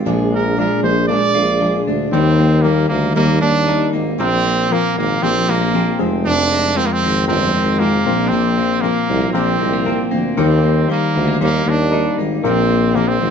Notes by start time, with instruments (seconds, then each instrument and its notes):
Already playing: clean electric guitar C4 F4 G4
0.05 tuba A#1, steel-string acoustic guitar A#2 F3 G#3 D4 G#4, reed electric piano A#3 D4 G#4
0.33 clean electric guitar G#3, trumpet A#4
0.57 steel-string acoustic guitar F3 G#3 D4 G#4, reed electric piano A#3 D4 F4, trumpet A#4
0.83 tuba A#1, clean electric guitar G#3, trumpet C5
1.08 steel-string acoustic guitar F3 G#3, reed electric piano A#3 D4 G#4, trumpet D5
1.12 steel-string acoustic guitar D4 G#4
1.35 tuba A#1, steel-string acoustic guitar G#3 D4 G#4, clean electric guitar F4
1.61 steel-string acoustic guitar F3 G#3 D4 G#4, reed electric piano A#3 D4 G#4
1.86 tuba D2, steel-string acoustic guitar G#3 D4 G#4
2.11 tuba D#2, steel-string acoustic guitar D#3 G3 A#3 D#4, reed electric piano A#3 D#4 G4 A#4, trumpet C4
2.39 steel-string acoustic guitar G3 A#3 D#4
2.62 steel-string acoustic guitar D#3 G3, trumpet A#3, reed electric piano A#3 D#4 G4 A#4
2.66 steel-string acoustic guitar A#3 D#4
2.89 tuba D2, trumpet A#3, clean electric guitar A#3
3.15 tuba D#2, steel-string acoustic guitar D#3 G3 A#3 D#4, trumpet A#3, reed electric piano A#3 D#4 G4 A#4
3.41 tuba D#2, clean electric guitar A#3, trumpet D4
3.68 steel-string acoustic guitar D#3 G3 A#3 D#4, reed electric piano A#3 D#4 G4 A#4
3.93 tuba G#1, steel-string acoustic guitar G3 A#3 D#4
4.19 tuba A#1, steel-string acoustic guitar A#2 F3 A#3 C4, reed electric piano A#3 C4 F4 A#4, trumpet C4
4.44 clean electric guitar A#3
4.72 steel-string acoustic guitar A#2 F3 A#3 C4, reed electric piano A#3 C4 F4 A#4, trumpet A#3
4.96 tuba G#1, clean electric guitar A#3, trumpet A#3
5.22 tuba A#1, steel-string acoustic guitar A#2 F3 A#3 C4, reed electric piano A#3 C4 F4 G4, trumpet C4
5.48 tuba A#1, clean electric guitar G#3, trumpet A#3
5.62 clean electric guitar A#3
5.74 steel-string acoustic guitar A#2 F3 A#3 C4, reed electric piano A#3 C4 F4 G#4
5.99 tuba F1, clean electric guitar F2, steel-string acoustic guitar F3 G#3 C4, reed electric piano G#3 C4 F4 G#4
6.25 steel-string acoustic guitar F2 C3 F3 G#3 C4, trumpet D4
6.51 clean electric guitar G#3
6.76 steel-string acoustic guitar C3 F3 G#3 C4, reed electric piano G#3 C4 F4 A#4, trumpet C4
6.86 trumpet A#3
6.93 trumpet C4
7.03 tuba G#1, clean electric guitar G#3
7.28 tuba G1, steel-string acoustic guitar F2 C3 F3 G#3 C4, reed electric piano G#3 C4 F4 A#4, trumpet C4
7.54 tuba G#1, clean electric guitar G#3
7.79 steel-string acoustic guitar C3 F3 G#3 C4, reed electric piano G#3 C4 F4 G#4, trumpet A#3
8.05 tuba A#1, clean electric guitar A#2, steel-string acoustic guitar F3 A#3 C4, reed electric piano A#3 C4 F4 A#4
8.25 trumpet C4 D4
8.32 steel-string acoustic guitar A#2 F3 A#3 C4
8.58 steel-string acoustic guitar F3 A#3 C4
8.81 steel-string acoustic guitar A#2 F3, trumpet A#3, reed electric piano A#3 C4 F4 A#4
8.86 steel-string acoustic guitar A#3 C4
9.09 tuba C2, clean electric guitar G#3
9.21 clean electric guitar A#3
9.33 tuba A#1, steel-string acoustic guitar A#2 F3 A#3 C4, reed electric piano A#3 C4 F4 A#4, trumpet C4
9.60 tuba C2, clean electric guitar G#3
9.73 clean electric guitar A#3
9.85 steel-string acoustic guitar A#2 F3 A#3 C4, reed electric piano A#3 C4 F4 A#4
10.11 tuba D2, steel-string acoustic guitar F3 A#3 C4
10.37 tuba D#2, steel-string acoustic guitar D#3 G3 A#3 D#4, reed electric piano A#3 D#4 G4 A#4, trumpet C4
10.63 clean electric guitar A#3
10.88 steel-string acoustic guitar D#3 G3 A#3 D#4, reed electric piano A#3 D#4 G4 C5, trumpet A#3
11.15 tuba D2, clean electric guitar G#3
11.27 clean electric guitar A#3
11.40 tuba D#2, steel-string acoustic guitar D#3 G3 A#3 D#4, reed electric piano A#3 D#4 G4 C5, trumpet A#3
11.66 tuba D#2, clean electric guitar A#3, trumpet D4
11.91 steel-string acoustic guitar D#3 G3 A#3 D#4, reed electric piano A#3 D#4 G4 A#4
12.18 tuba G#1, steel-string acoustic guitar G3 A#3 D#4
12.43 tuba A#1, steel-string acoustic guitar A#2 F3 A#3 C4, reed electric piano A#3 C4 F4 A#4, trumpet C4
12.70 clean electric guitar A#3
12.95 steel-string acoustic guitar A#2 F3 A#3 C4, reed electric piano A#3 C4 F4 G#4, trumpet A#3
13.08 trumpet C4
13.21 tuba G#1, clean electric guitar A#3